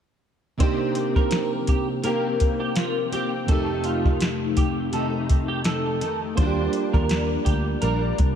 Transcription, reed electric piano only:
0.58 C3 A#3 D4 D#4
0.62 G4
3.46 F2 A3 C4
3.50 D#4 G4
6.35 A#3 D4 F4
6.40 F#4
6.47 G4

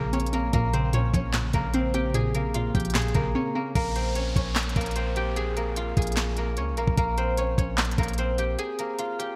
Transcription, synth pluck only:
Already playing: A#2 C#3 F3
0.13 C4
0.33 C4
0.53 A#2
0.73 C#3
0.93 A#2
1.13 F3
1.34 A#2
1.54 C#3
1.74 C4
1.94 C4
2.14 A#2
2.35 C#3
2.56 A#2
2.75 F3
2.95 A#2
3.15 C#3
3.35 C4
3.55 C4

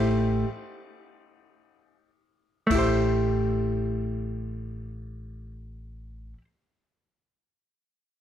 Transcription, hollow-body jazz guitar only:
Already playing: A3 E4 G4 C5
2.67 A3
2.71 E4 G4
2.78 C5

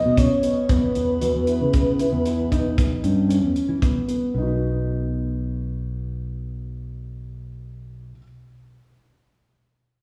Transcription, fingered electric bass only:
0.05 B2
0.69 E2
0.96 E2
1.22 E2
1.35 E2
1.61 C#3
2.13 E2
3.04 G2
3.43 E2
3.69 E3
4.34 B1

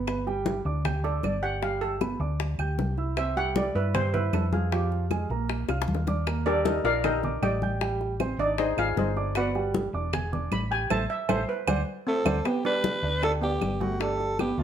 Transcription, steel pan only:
1.04 A4
1.25 D5
1.43 F#5
1.63 F5
1.81 A4
3.18 E5
3.37 F#5
3.57 D5
3.76 B4
3.95 C5
4.14 B4
4.34 A4
4.53 G#4
4.72 G4
6.46 D4 A4 A#4 D5
6.65 D#4 A4 A#4 D#5
6.85 F4 A#4 D5 F5
7.05 D#4 A4 A#4 D#5
7.43 G4 D5 D#5 G5
8.39 D4 D5
8.59 D#4 G#4 C5 D#5
8.79 F4 F5
8.98 D#4 G#4 C5 D#5
9.37 F#4 B4 D5 F#5
10.53 B5
10.72 G#5
10.91 A5
11.10 E5
11.30 C5
11.49 B4
12.07 C4
12.45 B3
12.65 D4
13.23 D4
13.41 B3
13.80 A3
14.00 D4
14.39 B3
14.59 A3

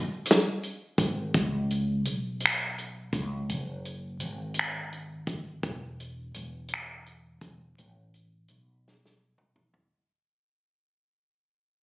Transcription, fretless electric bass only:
0.98 G#1
1.35 C#2
2.07 B1
3.13 C#2
3.49 F#1
4.21 G#1
5.64 E1
6.36 E1
7.42 E1
7.79 A1
8.50 B1

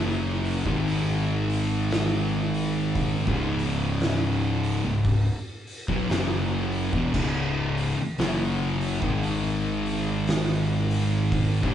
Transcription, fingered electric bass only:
Already playing: F#1
0.66 G#1
3.27 C#1
4.84 C#1
5.89 B1
6.10 F#1
6.93 E1
7.14 C#1
7.98 muted fingered electric bass stroke
8.19 F#1
9.02 G#1
11.64 C#1

